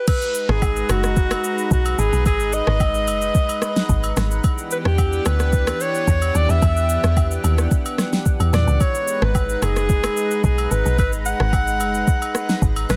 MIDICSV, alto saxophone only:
0, 0, Header, 1, 2, 480
1, 0, Start_track
1, 0, Key_signature, 5, "minor"
1, 0, Tempo, 545455
1, 67, Time_signature, 4, 2, 24, 8
1, 11407, End_track
2, 0, Start_track
2, 0, Title_t, "Alto saxophone"
2, 0, Program_c, 0, 65
2, 72, Note_on_c, 0, 71, 99
2, 438, Note_on_c, 0, 68, 92
2, 452, Note_off_c, 0, 71, 0
2, 793, Note_on_c, 0, 66, 102
2, 806, Note_off_c, 0, 68, 0
2, 1510, Note_off_c, 0, 66, 0
2, 1515, Note_on_c, 0, 66, 95
2, 1752, Note_on_c, 0, 68, 96
2, 1765, Note_off_c, 0, 66, 0
2, 1990, Note_off_c, 0, 68, 0
2, 1994, Note_on_c, 0, 68, 108
2, 2234, Note_on_c, 0, 75, 112
2, 2247, Note_off_c, 0, 68, 0
2, 3671, Note_off_c, 0, 75, 0
2, 4156, Note_on_c, 0, 71, 86
2, 4210, Note_off_c, 0, 71, 0
2, 4283, Note_on_c, 0, 67, 91
2, 4637, Note_on_c, 0, 71, 104
2, 4650, Note_off_c, 0, 67, 0
2, 5118, Note_on_c, 0, 73, 112
2, 5131, Note_off_c, 0, 71, 0
2, 5599, Note_on_c, 0, 74, 107
2, 5612, Note_off_c, 0, 73, 0
2, 5723, Note_on_c, 0, 76, 110
2, 5736, Note_off_c, 0, 74, 0
2, 6437, Note_off_c, 0, 76, 0
2, 7513, Note_on_c, 0, 74, 89
2, 7753, Note_on_c, 0, 73, 101
2, 7766, Note_off_c, 0, 74, 0
2, 8119, Note_on_c, 0, 71, 95
2, 8133, Note_off_c, 0, 73, 0
2, 8474, Note_on_c, 0, 68, 103
2, 8487, Note_off_c, 0, 71, 0
2, 9187, Note_off_c, 0, 68, 0
2, 9193, Note_on_c, 0, 68, 92
2, 9431, Note_on_c, 0, 71, 101
2, 9444, Note_off_c, 0, 68, 0
2, 9667, Note_off_c, 0, 71, 0
2, 9672, Note_on_c, 0, 71, 103
2, 9779, Note_off_c, 0, 71, 0
2, 9911, Note_on_c, 0, 78, 115
2, 11077, Note_off_c, 0, 78, 0
2, 11352, Note_on_c, 0, 71, 109
2, 11407, Note_off_c, 0, 71, 0
2, 11407, End_track
0, 0, End_of_file